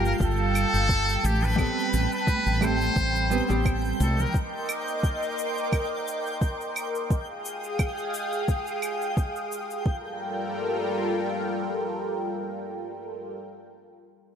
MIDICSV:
0, 0, Header, 1, 7, 480
1, 0, Start_track
1, 0, Tempo, 689655
1, 1102, Time_signature, 4, 2, 24, 8
1, 9989, End_track
2, 0, Start_track
2, 0, Title_t, "Synth texture"
2, 0, Program_c, 0, 99
2, 0, Note_on_c, 0, 79, 85
2, 0, Note_on_c, 0, 91, 86
2, 6872, Note_off_c, 0, 79, 0
2, 6873, Note_off_c, 0, 91, 0
2, 9989, End_track
3, 0, Start_track
3, 0, Title_t, "Analog synth pad"
3, 0, Program_c, 1, 89
3, 0, Note_on_c, 1, 77, 72
3, 0, Note_on_c, 1, 79, 72
3, 0, Note_on_c, 1, 81, 81
3, 846, Note_off_c, 1, 77, 0
3, 855, Note_on_c, 1, 83, 72
3, 2755, Note_off_c, 1, 79, 0
3, 2756, Note_off_c, 1, 81, 0
3, 2759, Note_off_c, 1, 83, 0
3, 2785, Note_on_c, 1, 75, 73
3, 2785, Note_on_c, 1, 84, 75
3, 2787, Note_on_c, 1, 70, 74
3, 2787, Note_on_c, 1, 86, 86
3, 4922, Note_off_c, 1, 75, 0
3, 4922, Note_off_c, 1, 84, 0
3, 4923, Note_off_c, 1, 70, 0
3, 4923, Note_off_c, 1, 86, 0
3, 4937, Note_on_c, 1, 77, 69
3, 4938, Note_on_c, 1, 68, 76
3, 4940, Note_on_c, 1, 79, 69
3, 4941, Note_on_c, 1, 87, 83
3, 6840, Note_off_c, 1, 77, 0
3, 6841, Note_off_c, 1, 68, 0
3, 6842, Note_off_c, 1, 79, 0
3, 6842, Note_off_c, 1, 87, 0
3, 6858, Note_on_c, 1, 65, 72
3, 6858, Note_on_c, 1, 70, 70
3, 6859, Note_on_c, 1, 55, 76
3, 6861, Note_on_c, 1, 69, 68
3, 6861, Note_on_c, 1, 79, 81
3, 9309, Note_off_c, 1, 55, 0
3, 9309, Note_off_c, 1, 65, 0
3, 9309, Note_off_c, 1, 70, 0
3, 9310, Note_off_c, 1, 79, 0
3, 9311, Note_off_c, 1, 69, 0
3, 9989, End_track
4, 0, Start_track
4, 0, Title_t, "Muted trumpet"
4, 0, Program_c, 2, 59
4, 42, Note_on_c, 2, 70, 86
4, 89, Note_off_c, 2, 70, 0
4, 156, Note_on_c, 2, 69, 108
4, 873, Note_on_c, 2, 67, 88
4, 884, Note_off_c, 2, 69, 0
4, 1004, Note_on_c, 2, 71, 97
4, 1014, Note_off_c, 2, 67, 0
4, 1478, Note_off_c, 2, 71, 0
4, 1485, Note_on_c, 2, 71, 99
4, 1837, Note_on_c, 2, 72, 111
4, 1847, Note_off_c, 2, 71, 0
4, 2606, Note_off_c, 2, 72, 0
4, 2800, Note_on_c, 2, 69, 79
4, 2928, Note_on_c, 2, 70, 75
4, 2939, Note_off_c, 2, 69, 0
4, 3031, Note_off_c, 2, 70, 0
4, 9989, End_track
5, 0, Start_track
5, 0, Title_t, "Hollow-body jazz guitar"
5, 0, Program_c, 3, 26
5, 0, Note_on_c, 3, 55, 96
5, 0, Note_on_c, 3, 58, 79
5, 0, Note_on_c, 3, 65, 76
5, 0, Note_on_c, 3, 67, 100
5, 841, Note_off_c, 3, 55, 0
5, 846, Note_off_c, 3, 58, 0
5, 851, Note_off_c, 3, 65, 0
5, 855, Note_off_c, 3, 67, 0
5, 1086, Note_on_c, 3, 55, 82
5, 1095, Note_on_c, 3, 59, 71
5, 1106, Note_on_c, 3, 60, 74
5, 1117, Note_on_c, 3, 69, 91
5, 1788, Note_off_c, 3, 55, 0
5, 1792, Note_off_c, 3, 59, 0
5, 1797, Note_off_c, 3, 60, 0
5, 1803, Note_off_c, 3, 69, 0
5, 1815, Note_on_c, 3, 55, 84
5, 1819, Note_on_c, 3, 57, 76
5, 1826, Note_on_c, 3, 60, 77
5, 1830, Note_on_c, 3, 69, 89
5, 2277, Note_off_c, 3, 55, 0
5, 2279, Note_off_c, 3, 57, 0
5, 2282, Note_off_c, 3, 60, 0
5, 2284, Note_off_c, 3, 69, 0
5, 2296, Note_on_c, 3, 55, 76
5, 2302, Note_on_c, 3, 59, 73
5, 2306, Note_on_c, 3, 60, 70
5, 2311, Note_on_c, 3, 71, 83
5, 2398, Note_off_c, 3, 55, 0
5, 2400, Note_off_c, 3, 59, 0
5, 2403, Note_off_c, 3, 60, 0
5, 2405, Note_off_c, 3, 71, 0
5, 2425, Note_on_c, 3, 55, 89
5, 2430, Note_on_c, 3, 59, 79
5, 2434, Note_on_c, 3, 60, 76
5, 2440, Note_on_c, 3, 67, 94
5, 2765, Note_off_c, 3, 55, 0
5, 2768, Note_off_c, 3, 59, 0
5, 2770, Note_off_c, 3, 60, 0
5, 2773, Note_off_c, 3, 67, 0
5, 9989, End_track
6, 0, Start_track
6, 0, Title_t, "Fretless electric bass"
6, 0, Program_c, 4, 35
6, 0, Note_on_c, 4, 31, 83
6, 88, Note_off_c, 4, 31, 0
6, 143, Note_on_c, 4, 31, 89
6, 446, Note_off_c, 4, 31, 0
6, 514, Note_on_c, 4, 31, 76
6, 807, Note_off_c, 4, 31, 0
6, 864, Note_on_c, 4, 33, 90
6, 1167, Note_off_c, 4, 33, 0
6, 1347, Note_on_c, 4, 33, 94
6, 1433, Note_off_c, 4, 33, 0
6, 1714, Note_on_c, 4, 33, 81
6, 2007, Note_off_c, 4, 33, 0
6, 2061, Note_on_c, 4, 33, 89
6, 2365, Note_off_c, 4, 33, 0
6, 2434, Note_on_c, 4, 33, 76
6, 2727, Note_off_c, 4, 33, 0
6, 2786, Note_on_c, 4, 36, 92
6, 2954, Note_off_c, 4, 36, 0
6, 9989, End_track
7, 0, Start_track
7, 0, Title_t, "Drums"
7, 37, Note_on_c, 9, 69, 29
7, 107, Note_off_c, 9, 69, 0
7, 141, Note_on_c, 9, 36, 102
7, 148, Note_on_c, 9, 69, 42
7, 210, Note_off_c, 9, 36, 0
7, 218, Note_off_c, 9, 69, 0
7, 384, Note_on_c, 9, 75, 73
7, 387, Note_on_c, 9, 69, 71
7, 454, Note_off_c, 9, 75, 0
7, 457, Note_off_c, 9, 69, 0
7, 518, Note_on_c, 9, 69, 33
7, 588, Note_off_c, 9, 69, 0
7, 620, Note_on_c, 9, 36, 98
7, 627, Note_on_c, 9, 69, 40
7, 690, Note_off_c, 9, 36, 0
7, 696, Note_off_c, 9, 69, 0
7, 758, Note_on_c, 9, 69, 27
7, 828, Note_off_c, 9, 69, 0
7, 859, Note_on_c, 9, 63, 74
7, 867, Note_on_c, 9, 69, 70
7, 928, Note_off_c, 9, 63, 0
7, 937, Note_off_c, 9, 69, 0
7, 989, Note_on_c, 9, 64, 86
7, 999, Note_on_c, 9, 69, 31
7, 1059, Note_off_c, 9, 64, 0
7, 1068, Note_off_c, 9, 69, 0
7, 1101, Note_on_c, 9, 36, 105
7, 1103, Note_on_c, 9, 75, 68
7, 1106, Note_on_c, 9, 69, 38
7, 1170, Note_off_c, 9, 36, 0
7, 1173, Note_off_c, 9, 75, 0
7, 1176, Note_off_c, 9, 69, 0
7, 1347, Note_on_c, 9, 69, 85
7, 1416, Note_off_c, 9, 69, 0
7, 1476, Note_on_c, 9, 69, 31
7, 1546, Note_off_c, 9, 69, 0
7, 1582, Note_on_c, 9, 36, 102
7, 1585, Note_on_c, 9, 69, 44
7, 1589, Note_on_c, 9, 63, 59
7, 1651, Note_off_c, 9, 36, 0
7, 1654, Note_off_c, 9, 69, 0
7, 1659, Note_off_c, 9, 63, 0
7, 1716, Note_on_c, 9, 69, 30
7, 1785, Note_off_c, 9, 69, 0
7, 1816, Note_on_c, 9, 64, 69
7, 1823, Note_on_c, 9, 75, 73
7, 1826, Note_on_c, 9, 63, 63
7, 1826, Note_on_c, 9, 69, 70
7, 1886, Note_off_c, 9, 64, 0
7, 1893, Note_off_c, 9, 75, 0
7, 1896, Note_off_c, 9, 63, 0
7, 1896, Note_off_c, 9, 69, 0
7, 1957, Note_on_c, 9, 69, 33
7, 2026, Note_off_c, 9, 69, 0
7, 2061, Note_on_c, 9, 36, 102
7, 2065, Note_on_c, 9, 69, 43
7, 2131, Note_off_c, 9, 36, 0
7, 2135, Note_off_c, 9, 69, 0
7, 2196, Note_on_c, 9, 69, 30
7, 2266, Note_off_c, 9, 69, 0
7, 2306, Note_on_c, 9, 69, 70
7, 2375, Note_off_c, 9, 69, 0
7, 2437, Note_on_c, 9, 69, 30
7, 2507, Note_off_c, 9, 69, 0
7, 2542, Note_on_c, 9, 36, 101
7, 2545, Note_on_c, 9, 75, 69
7, 2548, Note_on_c, 9, 69, 43
7, 2612, Note_off_c, 9, 36, 0
7, 2615, Note_off_c, 9, 75, 0
7, 2618, Note_off_c, 9, 69, 0
7, 2678, Note_on_c, 9, 69, 27
7, 2748, Note_off_c, 9, 69, 0
7, 2784, Note_on_c, 9, 63, 86
7, 2787, Note_on_c, 9, 69, 68
7, 2854, Note_off_c, 9, 63, 0
7, 2857, Note_off_c, 9, 69, 0
7, 2914, Note_on_c, 9, 64, 89
7, 2918, Note_on_c, 9, 69, 33
7, 2983, Note_off_c, 9, 64, 0
7, 2988, Note_off_c, 9, 69, 0
7, 3023, Note_on_c, 9, 36, 100
7, 3030, Note_on_c, 9, 69, 40
7, 3092, Note_off_c, 9, 36, 0
7, 3100, Note_off_c, 9, 69, 0
7, 3263, Note_on_c, 9, 75, 76
7, 3266, Note_on_c, 9, 69, 81
7, 3333, Note_off_c, 9, 75, 0
7, 3336, Note_off_c, 9, 69, 0
7, 3397, Note_on_c, 9, 69, 32
7, 3467, Note_off_c, 9, 69, 0
7, 3504, Note_on_c, 9, 36, 100
7, 3508, Note_on_c, 9, 69, 43
7, 3573, Note_off_c, 9, 36, 0
7, 3577, Note_off_c, 9, 69, 0
7, 3638, Note_on_c, 9, 69, 28
7, 3708, Note_off_c, 9, 69, 0
7, 3748, Note_on_c, 9, 69, 71
7, 3818, Note_off_c, 9, 69, 0
7, 3880, Note_on_c, 9, 69, 30
7, 3950, Note_off_c, 9, 69, 0
7, 3984, Note_on_c, 9, 36, 100
7, 3986, Note_on_c, 9, 75, 64
7, 3989, Note_on_c, 9, 69, 39
7, 4054, Note_off_c, 9, 36, 0
7, 4056, Note_off_c, 9, 75, 0
7, 4059, Note_off_c, 9, 69, 0
7, 4230, Note_on_c, 9, 69, 77
7, 4299, Note_off_c, 9, 69, 0
7, 4360, Note_on_c, 9, 69, 31
7, 4430, Note_off_c, 9, 69, 0
7, 4464, Note_on_c, 9, 36, 97
7, 4469, Note_on_c, 9, 69, 41
7, 4534, Note_off_c, 9, 36, 0
7, 4538, Note_off_c, 9, 69, 0
7, 4600, Note_on_c, 9, 69, 29
7, 4669, Note_off_c, 9, 69, 0
7, 4705, Note_on_c, 9, 75, 66
7, 4709, Note_on_c, 9, 69, 69
7, 4775, Note_off_c, 9, 75, 0
7, 4778, Note_off_c, 9, 69, 0
7, 4839, Note_on_c, 9, 69, 32
7, 4908, Note_off_c, 9, 69, 0
7, 4945, Note_on_c, 9, 36, 100
7, 4948, Note_on_c, 9, 69, 39
7, 5015, Note_off_c, 9, 36, 0
7, 5018, Note_off_c, 9, 69, 0
7, 5186, Note_on_c, 9, 69, 77
7, 5256, Note_off_c, 9, 69, 0
7, 5316, Note_on_c, 9, 69, 31
7, 5385, Note_off_c, 9, 69, 0
7, 5422, Note_on_c, 9, 75, 69
7, 5424, Note_on_c, 9, 36, 91
7, 5426, Note_on_c, 9, 69, 41
7, 5492, Note_off_c, 9, 75, 0
7, 5493, Note_off_c, 9, 36, 0
7, 5495, Note_off_c, 9, 69, 0
7, 5555, Note_on_c, 9, 69, 28
7, 5625, Note_off_c, 9, 69, 0
7, 5666, Note_on_c, 9, 69, 70
7, 5735, Note_off_c, 9, 69, 0
7, 5795, Note_on_c, 9, 69, 30
7, 5865, Note_off_c, 9, 69, 0
7, 5904, Note_on_c, 9, 36, 99
7, 5905, Note_on_c, 9, 69, 39
7, 5973, Note_off_c, 9, 36, 0
7, 5975, Note_off_c, 9, 69, 0
7, 6034, Note_on_c, 9, 69, 29
7, 6104, Note_off_c, 9, 69, 0
7, 6141, Note_on_c, 9, 75, 64
7, 6144, Note_on_c, 9, 69, 71
7, 6210, Note_off_c, 9, 75, 0
7, 6213, Note_off_c, 9, 69, 0
7, 6277, Note_on_c, 9, 69, 29
7, 6346, Note_off_c, 9, 69, 0
7, 6382, Note_on_c, 9, 36, 101
7, 6386, Note_on_c, 9, 69, 40
7, 6452, Note_off_c, 9, 36, 0
7, 6456, Note_off_c, 9, 69, 0
7, 6515, Note_on_c, 9, 69, 26
7, 6585, Note_off_c, 9, 69, 0
7, 6625, Note_on_c, 9, 69, 69
7, 6695, Note_off_c, 9, 69, 0
7, 6755, Note_on_c, 9, 69, 30
7, 6825, Note_off_c, 9, 69, 0
7, 6860, Note_on_c, 9, 36, 96
7, 6930, Note_off_c, 9, 36, 0
7, 9989, End_track
0, 0, End_of_file